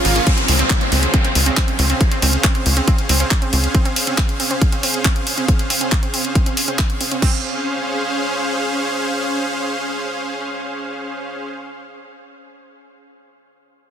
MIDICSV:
0, 0, Header, 1, 8, 480
1, 0, Start_track
1, 0, Key_signature, -5, "major"
1, 0, Tempo, 434783
1, 295, Time_signature, 4, 2, 24, 8
1, 15349, End_track
2, 0, Start_track
2, 0, Title_t, "Supersaw synth"
2, 0, Program_c, 0, 81
2, 0, Note_on_c, 0, 58, 79
2, 0, Note_on_c, 0, 65, 73
2, 0, Note_on_c, 0, 68, 70
2, 0, Note_on_c, 0, 73, 85
2, 251, Note_off_c, 0, 58, 0
2, 251, Note_off_c, 0, 65, 0
2, 251, Note_off_c, 0, 68, 0
2, 251, Note_off_c, 0, 73, 0
2, 295, Note_on_c, 0, 61, 76
2, 295, Note_on_c, 0, 72, 70
2, 296, Note_on_c, 0, 68, 70
2, 296, Note_on_c, 0, 77, 84
2, 7931, Note_off_c, 0, 61, 0
2, 7931, Note_off_c, 0, 68, 0
2, 7931, Note_off_c, 0, 72, 0
2, 7931, Note_off_c, 0, 77, 0
2, 7975, Note_on_c, 0, 61, 75
2, 7975, Note_on_c, 0, 72, 67
2, 7975, Note_on_c, 0, 77, 82
2, 7976, Note_on_c, 0, 68, 70
2, 12654, Note_off_c, 0, 61, 0
2, 12654, Note_off_c, 0, 68, 0
2, 12654, Note_off_c, 0, 72, 0
2, 12654, Note_off_c, 0, 77, 0
2, 15349, End_track
3, 0, Start_track
3, 0, Title_t, "Digital synth lead"
3, 0, Program_c, 1, 84
3, 55, Note_on_c, 1, 65, 63
3, 162, Note_off_c, 1, 65, 0
3, 175, Note_on_c, 1, 65, 64
3, 282, Note_off_c, 1, 65, 0
3, 15349, End_track
4, 0, Start_track
4, 0, Title_t, "Supersaw synth"
4, 0, Program_c, 2, 81
4, 53, Note_on_c, 2, 65, 65
4, 161, Note_off_c, 2, 65, 0
4, 173, Note_on_c, 2, 65, 66
4, 281, Note_off_c, 2, 65, 0
4, 15349, End_track
5, 0, Start_track
5, 0, Title_t, "Synth pluck"
5, 0, Program_c, 3, 84
5, 54, Note_on_c, 3, 58, 77
5, 113, Note_off_c, 3, 58, 0
5, 174, Note_on_c, 3, 61, 76
5, 233, Note_off_c, 3, 61, 0
5, 294, Note_on_c, 3, 60, 85
5, 330, Note_off_c, 3, 60, 0
5, 534, Note_on_c, 3, 60, 79
5, 570, Note_off_c, 3, 60, 0
5, 654, Note_on_c, 3, 60, 77
5, 690, Note_off_c, 3, 60, 0
5, 895, Note_on_c, 3, 60, 77
5, 930, Note_off_c, 3, 60, 0
5, 1014, Note_on_c, 3, 60, 76
5, 1050, Note_off_c, 3, 60, 0
5, 1254, Note_on_c, 3, 60, 83
5, 1290, Note_off_c, 3, 60, 0
5, 1375, Note_on_c, 3, 60, 77
5, 1410, Note_off_c, 3, 60, 0
5, 1614, Note_on_c, 3, 60, 73
5, 1650, Note_off_c, 3, 60, 0
5, 1735, Note_on_c, 3, 60, 80
5, 1770, Note_off_c, 3, 60, 0
5, 1975, Note_on_c, 3, 60, 77
5, 2010, Note_off_c, 3, 60, 0
5, 2094, Note_on_c, 3, 60, 74
5, 2130, Note_off_c, 3, 60, 0
5, 2335, Note_on_c, 3, 60, 75
5, 2370, Note_off_c, 3, 60, 0
5, 2455, Note_on_c, 3, 60, 78
5, 2490, Note_off_c, 3, 60, 0
5, 2695, Note_on_c, 3, 60, 84
5, 2730, Note_off_c, 3, 60, 0
5, 2815, Note_on_c, 3, 60, 77
5, 2850, Note_off_c, 3, 60, 0
5, 3055, Note_on_c, 3, 60, 74
5, 3090, Note_off_c, 3, 60, 0
5, 3175, Note_on_c, 3, 60, 83
5, 3210, Note_off_c, 3, 60, 0
5, 3415, Note_on_c, 3, 60, 77
5, 3450, Note_off_c, 3, 60, 0
5, 3535, Note_on_c, 3, 60, 75
5, 3570, Note_off_c, 3, 60, 0
5, 3775, Note_on_c, 3, 60, 79
5, 3810, Note_off_c, 3, 60, 0
5, 3895, Note_on_c, 3, 60, 78
5, 3930, Note_off_c, 3, 60, 0
5, 4136, Note_on_c, 3, 60, 81
5, 4170, Note_off_c, 3, 60, 0
5, 4255, Note_on_c, 3, 60, 76
5, 4290, Note_off_c, 3, 60, 0
5, 4495, Note_on_c, 3, 60, 75
5, 4530, Note_off_c, 3, 60, 0
5, 4855, Note_on_c, 3, 60, 78
5, 4890, Note_off_c, 3, 60, 0
5, 4975, Note_on_c, 3, 60, 76
5, 5010, Note_off_c, 3, 60, 0
5, 5215, Note_on_c, 3, 60, 76
5, 5250, Note_off_c, 3, 60, 0
5, 5335, Note_on_c, 3, 60, 76
5, 5370, Note_off_c, 3, 60, 0
5, 5574, Note_on_c, 3, 60, 79
5, 5610, Note_off_c, 3, 60, 0
5, 5694, Note_on_c, 3, 60, 78
5, 5730, Note_off_c, 3, 60, 0
5, 5934, Note_on_c, 3, 60, 73
5, 5970, Note_off_c, 3, 60, 0
5, 6054, Note_on_c, 3, 60, 83
5, 6089, Note_off_c, 3, 60, 0
5, 6295, Note_on_c, 3, 60, 76
5, 6330, Note_off_c, 3, 60, 0
5, 6415, Note_on_c, 3, 60, 74
5, 6450, Note_off_c, 3, 60, 0
5, 6654, Note_on_c, 3, 60, 76
5, 6690, Note_off_c, 3, 60, 0
5, 6775, Note_on_c, 3, 60, 75
5, 6810, Note_off_c, 3, 60, 0
5, 7015, Note_on_c, 3, 60, 83
5, 7050, Note_off_c, 3, 60, 0
5, 7135, Note_on_c, 3, 60, 75
5, 7170, Note_off_c, 3, 60, 0
5, 7374, Note_on_c, 3, 60, 72
5, 7410, Note_off_c, 3, 60, 0
5, 7495, Note_on_c, 3, 60, 78
5, 7530, Note_off_c, 3, 60, 0
5, 7735, Note_on_c, 3, 60, 75
5, 7770, Note_off_c, 3, 60, 0
5, 7855, Note_on_c, 3, 60, 74
5, 7890, Note_off_c, 3, 60, 0
5, 7974, Note_on_c, 3, 60, 92
5, 8198, Note_off_c, 3, 60, 0
5, 15349, End_track
6, 0, Start_track
6, 0, Title_t, "Analog synth bass"
6, 0, Program_c, 4, 38
6, 56, Note_on_c, 4, 32, 85
6, 218, Note_off_c, 4, 32, 0
6, 536, Note_on_c, 4, 37, 100
6, 698, Note_off_c, 4, 37, 0
6, 1016, Note_on_c, 4, 37, 96
6, 1178, Note_off_c, 4, 37, 0
6, 1496, Note_on_c, 4, 37, 89
6, 1658, Note_off_c, 4, 37, 0
6, 1976, Note_on_c, 4, 37, 94
6, 2138, Note_off_c, 4, 37, 0
6, 2456, Note_on_c, 4, 37, 99
6, 2618, Note_off_c, 4, 37, 0
6, 2936, Note_on_c, 4, 37, 93
6, 3098, Note_off_c, 4, 37, 0
6, 3415, Note_on_c, 4, 37, 87
6, 3578, Note_off_c, 4, 37, 0
6, 3896, Note_on_c, 4, 37, 91
6, 4058, Note_off_c, 4, 37, 0
6, 15349, End_track
7, 0, Start_track
7, 0, Title_t, "Downlifter"
7, 0, Program_c, 5, 103
7, 296, Note_on_c, 5, 60, 72
7, 4135, Note_off_c, 5, 60, 0
7, 15349, End_track
8, 0, Start_track
8, 0, Title_t, "Drums"
8, 55, Note_on_c, 9, 46, 105
8, 165, Note_off_c, 9, 46, 0
8, 175, Note_on_c, 9, 42, 56
8, 285, Note_off_c, 9, 42, 0
8, 295, Note_on_c, 9, 36, 117
8, 295, Note_on_c, 9, 42, 83
8, 405, Note_off_c, 9, 36, 0
8, 405, Note_off_c, 9, 42, 0
8, 415, Note_on_c, 9, 42, 54
8, 525, Note_off_c, 9, 42, 0
8, 535, Note_on_c, 9, 46, 107
8, 645, Note_off_c, 9, 46, 0
8, 655, Note_on_c, 9, 42, 54
8, 765, Note_off_c, 9, 42, 0
8, 775, Note_on_c, 9, 36, 118
8, 775, Note_on_c, 9, 39, 123
8, 775, Note_on_c, 9, 42, 82
8, 885, Note_off_c, 9, 39, 0
8, 885, Note_off_c, 9, 42, 0
8, 886, Note_off_c, 9, 36, 0
8, 895, Note_on_c, 9, 42, 52
8, 1005, Note_off_c, 9, 42, 0
8, 1015, Note_on_c, 9, 46, 102
8, 1125, Note_off_c, 9, 46, 0
8, 1135, Note_on_c, 9, 42, 55
8, 1245, Note_off_c, 9, 42, 0
8, 1255, Note_on_c, 9, 36, 119
8, 1255, Note_on_c, 9, 42, 81
8, 1365, Note_off_c, 9, 42, 0
8, 1366, Note_off_c, 9, 36, 0
8, 1375, Note_on_c, 9, 42, 54
8, 1485, Note_off_c, 9, 42, 0
8, 1495, Note_on_c, 9, 46, 105
8, 1605, Note_off_c, 9, 46, 0
8, 1615, Note_on_c, 9, 42, 53
8, 1725, Note_off_c, 9, 42, 0
8, 1735, Note_on_c, 9, 36, 115
8, 1735, Note_on_c, 9, 39, 121
8, 1735, Note_on_c, 9, 42, 85
8, 1845, Note_off_c, 9, 39, 0
8, 1845, Note_off_c, 9, 42, 0
8, 1846, Note_off_c, 9, 36, 0
8, 1855, Note_on_c, 9, 42, 54
8, 1965, Note_off_c, 9, 42, 0
8, 1975, Note_on_c, 9, 46, 106
8, 2085, Note_off_c, 9, 46, 0
8, 2095, Note_on_c, 9, 42, 52
8, 2205, Note_off_c, 9, 42, 0
8, 2215, Note_on_c, 9, 36, 118
8, 2215, Note_on_c, 9, 42, 81
8, 2325, Note_off_c, 9, 42, 0
8, 2326, Note_off_c, 9, 36, 0
8, 2335, Note_on_c, 9, 42, 52
8, 2445, Note_off_c, 9, 42, 0
8, 2455, Note_on_c, 9, 46, 109
8, 2565, Note_off_c, 9, 46, 0
8, 2575, Note_on_c, 9, 42, 53
8, 2685, Note_off_c, 9, 42, 0
8, 2695, Note_on_c, 9, 36, 124
8, 2695, Note_on_c, 9, 39, 123
8, 2695, Note_on_c, 9, 42, 78
8, 2805, Note_off_c, 9, 39, 0
8, 2805, Note_off_c, 9, 42, 0
8, 2806, Note_off_c, 9, 36, 0
8, 2815, Note_on_c, 9, 42, 49
8, 2925, Note_off_c, 9, 42, 0
8, 2935, Note_on_c, 9, 46, 104
8, 3045, Note_off_c, 9, 46, 0
8, 3055, Note_on_c, 9, 42, 52
8, 3165, Note_off_c, 9, 42, 0
8, 3175, Note_on_c, 9, 36, 126
8, 3175, Note_on_c, 9, 42, 77
8, 3285, Note_off_c, 9, 42, 0
8, 3286, Note_off_c, 9, 36, 0
8, 3295, Note_on_c, 9, 42, 52
8, 3406, Note_off_c, 9, 42, 0
8, 3415, Note_on_c, 9, 46, 106
8, 3526, Note_off_c, 9, 46, 0
8, 3535, Note_on_c, 9, 42, 51
8, 3645, Note_off_c, 9, 42, 0
8, 3655, Note_on_c, 9, 36, 116
8, 3655, Note_on_c, 9, 39, 121
8, 3655, Note_on_c, 9, 42, 79
8, 3766, Note_off_c, 9, 36, 0
8, 3766, Note_off_c, 9, 39, 0
8, 3766, Note_off_c, 9, 42, 0
8, 3775, Note_on_c, 9, 42, 52
8, 3885, Note_off_c, 9, 42, 0
8, 3895, Note_on_c, 9, 46, 111
8, 4006, Note_off_c, 9, 46, 0
8, 4015, Note_on_c, 9, 42, 51
8, 4126, Note_off_c, 9, 42, 0
8, 4135, Note_on_c, 9, 36, 120
8, 4135, Note_on_c, 9, 42, 75
8, 4246, Note_off_c, 9, 36, 0
8, 4246, Note_off_c, 9, 42, 0
8, 4255, Note_on_c, 9, 42, 48
8, 4366, Note_off_c, 9, 42, 0
8, 4376, Note_on_c, 9, 46, 109
8, 4486, Note_off_c, 9, 46, 0
8, 4496, Note_on_c, 9, 42, 51
8, 4606, Note_off_c, 9, 42, 0
8, 4615, Note_on_c, 9, 36, 124
8, 4616, Note_on_c, 9, 39, 117
8, 4616, Note_on_c, 9, 42, 75
8, 4726, Note_off_c, 9, 36, 0
8, 4726, Note_off_c, 9, 39, 0
8, 4726, Note_off_c, 9, 42, 0
8, 4736, Note_on_c, 9, 42, 49
8, 4846, Note_off_c, 9, 42, 0
8, 4856, Note_on_c, 9, 46, 105
8, 4966, Note_off_c, 9, 46, 0
8, 4976, Note_on_c, 9, 42, 50
8, 5086, Note_off_c, 9, 42, 0
8, 5095, Note_on_c, 9, 36, 122
8, 5096, Note_on_c, 9, 42, 76
8, 5206, Note_off_c, 9, 36, 0
8, 5206, Note_off_c, 9, 42, 0
8, 5215, Note_on_c, 9, 42, 50
8, 5326, Note_off_c, 9, 42, 0
8, 5335, Note_on_c, 9, 46, 108
8, 5446, Note_off_c, 9, 46, 0
8, 5456, Note_on_c, 9, 42, 49
8, 5566, Note_off_c, 9, 42, 0
8, 5575, Note_on_c, 9, 36, 120
8, 5576, Note_on_c, 9, 39, 119
8, 5576, Note_on_c, 9, 42, 77
8, 5686, Note_off_c, 9, 36, 0
8, 5686, Note_off_c, 9, 39, 0
8, 5686, Note_off_c, 9, 42, 0
8, 5695, Note_on_c, 9, 42, 50
8, 5806, Note_off_c, 9, 42, 0
8, 5815, Note_on_c, 9, 46, 107
8, 5926, Note_off_c, 9, 46, 0
8, 5935, Note_on_c, 9, 42, 49
8, 6046, Note_off_c, 9, 42, 0
8, 6055, Note_on_c, 9, 36, 121
8, 6055, Note_on_c, 9, 42, 72
8, 6165, Note_off_c, 9, 42, 0
8, 6166, Note_off_c, 9, 36, 0
8, 6175, Note_on_c, 9, 42, 48
8, 6285, Note_off_c, 9, 42, 0
8, 6295, Note_on_c, 9, 46, 106
8, 6405, Note_off_c, 9, 46, 0
8, 6415, Note_on_c, 9, 42, 49
8, 6526, Note_off_c, 9, 42, 0
8, 6535, Note_on_c, 9, 36, 123
8, 6535, Note_on_c, 9, 39, 110
8, 6535, Note_on_c, 9, 42, 73
8, 6646, Note_off_c, 9, 36, 0
8, 6646, Note_off_c, 9, 39, 0
8, 6646, Note_off_c, 9, 42, 0
8, 6655, Note_on_c, 9, 42, 47
8, 6766, Note_off_c, 9, 42, 0
8, 6776, Note_on_c, 9, 46, 101
8, 6886, Note_off_c, 9, 46, 0
8, 6896, Note_on_c, 9, 42, 47
8, 7006, Note_off_c, 9, 42, 0
8, 7015, Note_on_c, 9, 36, 117
8, 7015, Note_on_c, 9, 42, 74
8, 7126, Note_off_c, 9, 36, 0
8, 7126, Note_off_c, 9, 42, 0
8, 7135, Note_on_c, 9, 42, 48
8, 7246, Note_off_c, 9, 42, 0
8, 7255, Note_on_c, 9, 46, 106
8, 7365, Note_off_c, 9, 46, 0
8, 7375, Note_on_c, 9, 42, 47
8, 7486, Note_off_c, 9, 42, 0
8, 7495, Note_on_c, 9, 36, 119
8, 7495, Note_on_c, 9, 39, 114
8, 7495, Note_on_c, 9, 42, 71
8, 7605, Note_off_c, 9, 36, 0
8, 7606, Note_off_c, 9, 39, 0
8, 7606, Note_off_c, 9, 42, 0
8, 7615, Note_on_c, 9, 42, 49
8, 7725, Note_off_c, 9, 42, 0
8, 7735, Note_on_c, 9, 46, 105
8, 7845, Note_off_c, 9, 46, 0
8, 7855, Note_on_c, 9, 42, 48
8, 7965, Note_off_c, 9, 42, 0
8, 7975, Note_on_c, 9, 36, 98
8, 7975, Note_on_c, 9, 49, 83
8, 8085, Note_off_c, 9, 36, 0
8, 8085, Note_off_c, 9, 49, 0
8, 15349, End_track
0, 0, End_of_file